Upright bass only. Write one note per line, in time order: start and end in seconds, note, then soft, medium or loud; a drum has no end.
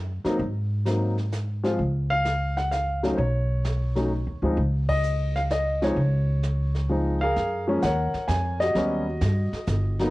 0.00 0.20 F#2 medium
0.24 muted upright bass stroke soft
0.39 1.75 G#2 medium
1.79 3.14 C#2 medium
3.18 4.23 B1 medium
4.27 4.41 D#2 medium
4.42 4.56 D2 medium
4.57 5.93 C#2 medium
5.96 7.32 C#2 medium
7.36 7.81 F#2 medium
7.83 8.12 D#2 medium
8.14 muted upright bass stroke soft
8.28 8.74 F2 medium
8.75 9.20 D#2 medium
9.21 9.51 G2 medium
9.52 muted upright bass stroke soft
9.67 10.10 G1 medium